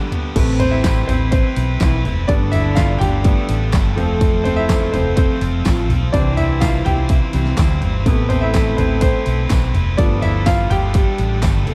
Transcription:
Already playing: overdriven electric guitar G2 D3 G3 B3 D4, grand piano D3 G3 B3 G4 G5
0.11 overdriven electric guitar G3 B3 D4 G4, closed hi-hat, floor tom
0.35 fretless electric bass A1, overdriven electric guitar A2 A3 C4 E4 B4, grand piano C3 A3 B4, french horn section C3 C4, kick, open hi-hat, crash
0.59 grand piano C4 C5, overdriven electric guitar C4 E4 B4, floor tom, open hi-hat
0.71 grand piano E4 E5
0.83 overdriven electric guitar A3 C4 E4 B4, kick, snare, clap, open hi-hat, tambourine
1.07 fretless electric bass A1, grand piano C4 C5, overdriven electric guitar C4 E4 B4, floor tom, open hi-hat
1.31 overdriven electric guitar A2 A3 C4 E4 B4, grand piano C4 C5, kick, open hi-hat
1.55 fretless electric bass B1, overdriven electric guitar C4 E4 B4, open hi-hat
1.79 fretless electric bass B1, french horn section E3 E4, overdriven electric guitar A3 C4 E4 B4, kick, snare, clap, open hi-hat, tambourine
2.04 fretless electric bass F1, overdriven electric guitar C4 E4 B4, floor tom, open hi-hat
2.28 fretless electric bass G1, french horn section D3 D4, grand piano G3 A3 B3 D4 D5, overdriven electric guitar G3 B3 D4 A4, kick, open hi-hat
2.52 overdriven electric guitar B3 D4 A4, grand piano E4 E5, floor tom, open hi-hat
2.75 overdriven electric guitar G3 B3 D4, grand piano F4 F5, kick, snare, clap, open hi-hat, tambourine
2.80 overdriven electric guitar A4
2.99 fretless electric bass G1, overdriven electric guitar B3 A4, grand piano G4 G5, floor tom, open hi-hat
3.04 overdriven electric guitar D4
3.24 grand piano G3 A3 B3, overdriven electric guitar G3 B3 D4 A4, kick, open hi-hat
3.49 fretless electric bass A1, overdriven electric guitar B3 D4 A4, open hi-hat
3.72 fretless electric bass G1, overdriven electric guitar G3 B3 D4 A4, kick, snare, clap, open hi-hat, tambourine
3.96 fretless electric bass F1, grand piano F3 A3 C4, french horn section A3 A4, overdriven electric guitar C4 F4 A4, floor tom, open hi-hat
4.21 overdriven electric guitar F3 A3 C4 F4 A4, kick, open hi-hat
4.44 grand piano C4 C5, overdriven electric guitar F4 A4, floor tom, open hi-hat
4.48 overdriven electric guitar C4
4.56 grand piano E4 E5
4.68 grand piano F3 A3 C4, overdriven electric guitar A3 C4 F4 A4, kick, snare, clap, open hi-hat, tambourine
4.92 fretless electric bass F1, grand piano C4 C5, overdriven electric guitar C4 F4 A4, floor tom, open hi-hat
5.16 overdriven electric guitar F3 A3 C4 F4 A4, grand piano C4 C5, kick, open hi-hat
5.41 fretless electric bass F1, overdriven electric guitar C4 F4 A4, open hi-hat
5.64 fretless electric bass A1, french horn section F3 F4, overdriven electric guitar A3 C4 F4 A4, kick, snare, clap, open hi-hat, tambourine
5.89 fretless electric bass B1, overdriven electric guitar C4 F4 A4, floor tom, open hi-hat
6.12 fretless electric bass C2, overdriven electric guitar C3 E3 G3 C4 E4 C5, grand piano E3 G3 C4 D4 D5, french horn section E3 E4, kick, open hi-hat
6.37 overdriven electric guitar G3 C4 E4 C5, grand piano E4 E5, floor tom, open hi-hat
6.60 overdriven electric guitar G3 C4 E4 C5, grand piano F4 F5, kick, snare, clap, open hi-hat, tambourine
6.85 fretless electric bass C2, overdriven electric guitar G3 C4 E4 C5, grand piano G4 G5, floor tom, open hi-hat
7.09 overdriven electric guitar C3 E3 G3 C4 E4 C5, kick, open hi-hat
7.33 fretless electric bass C2, grand piano E3 G3 C4, overdriven electric guitar G3 C4 E4 C5, open hi-hat
7.46 snare
7.57 fretless electric bass D2, overdriven electric guitar G3 C4 E4 C5, kick, snare, clap, open hi-hat, tambourine
7.81 fretless electric bass G1, overdriven electric guitar G3 C4 E4 C5, floor tom, open hi-hat
8.05 fretless electric bass A1, overdriven electric guitar A2 A3 C4 E4 B4, grand piano C3 A3 B3, french horn section A3 A4, kick, open hi-hat
8.29 grand piano C4 C5, overdriven electric guitar C4 E4 B4, floor tom, open hi-hat
8.41 grand piano E4 E5
8.54 overdriven electric guitar A3 C4 E4 B4, kick, snare, clap, open hi-hat, tambourine
8.77 fretless electric bass A1, grand piano C4 C5, overdriven electric guitar C4 E4 B4, floor tom, open hi-hat
9.01 overdriven electric guitar A2 A3 C4 E4 B4, grand piano C4 C5, kick, open hi-hat
9.25 fretless electric bass B1, overdriven electric guitar C4 E4 B4, open hi-hat
9.49 fretless electric bass B1, overdriven electric guitar A3 C4 E4 B4, kick, snare, clap, open hi-hat, tambourine
9.73 fretless electric bass F1, overdriven electric guitar C4 E4 B4, floor tom, open hi-hat
9.97 fretless electric bass G1, french horn section F3 F4, overdriven electric guitar G3 B3 D4 A4, grand piano G3 A3 B3 D4 D5, kick, open hi-hat
10.21 overdriven electric guitar B3 D4 A4, grand piano E4 E5, floor tom, open hi-hat
10.45 overdriven electric guitar G3 B3 D4 A4, grand piano F4 F5, kick, snare, clap, open hi-hat, tambourine
10.70 fretless electric bass G1, overdriven electric guitar B3 D4 A4, grand piano G4 G5, floor tom, open hi-hat
10.94 overdriven electric guitar G3 B3 D4 A4, french horn section G3 G4, kick, open hi-hat
11.18 fretless electric bass A1, overdriven electric guitar B3 D4 A4, open hi-hat
11.42 fretless electric bass G1, overdriven electric guitar G3 B3 D4 A4, kick, snare, clap, open hi-hat, tambourine
11.66 fretless electric bass F1, french horn section A3 A4, overdriven electric guitar C4 F4 A4, floor tom, open hi-hat

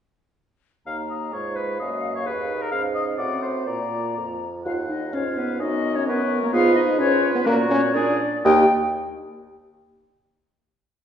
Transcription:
0.86 bassoon D#2, french horn A#3, clarinet D#4, oboe F5, flute A#5
1.10 oboe D#5
1.32 bassoon G#2, french horn G#3, clarinet F4, oboe C#5, flute F5
1.56 oboe B4
1.80 bassoon F#2, french horn A#3, clarinet F#4, oboe D#5
2.15 oboe C#5
2.26 bassoon D#2, french horn D#4, clarinet G#4, oboe B4
2.61 oboe A#4
2.71 bassoon G#2, french horn C#4, flute F5, oboe F5
2.95 oboe D#5
3.17 bassoon A2, french horn C4, clarinet F#4, oboe D5, flute F#5
3.42 oboe C5
3.66 bassoon A#2, french horn A#3, clarinet F4, oboe D5, flute A#5
4.17 bassoon F2
4.65 bassoon D#2, french horn F4, flute F5, oboe F#5
4.89 french horn D#4, flute D#5
5.12 bassoon G#2, french horn C#4, clarinet F4, flute C#5, oboe F5
5.37 french horn B3, flute B4
5.59 bassoon F#2, french horn D#4, clarinet F#4, oboe D#5, flute D#5
5.95 french horn C#4, flute C#5
6.06 french horn B3, clarinet A#4, flute B4, oboe C#5
6.41 french horn A#3, flute A#4
6.52 bassoon G#2, french horn F4, clarinet G#4, oboe B4, flute F5
6.75 french horn D#4, flute D#5
6.98 bassoon G#2, french horn C#4, clarinet F4, oboe B4, flute C#5
7.34 french horn B3, flute B4
7.46 bassoon A#2, french horn A#3, oboe F#4, clarinet F#4, flute A#4
7.69 french horn C#4, flute C#5
7.94 bassoon A#2, french horn D4, oboe G#4, clarinet A#4, flute D5
8.44 bassoon D#2, clarinet A#3, french horn G4, oboe D#5, flute G5

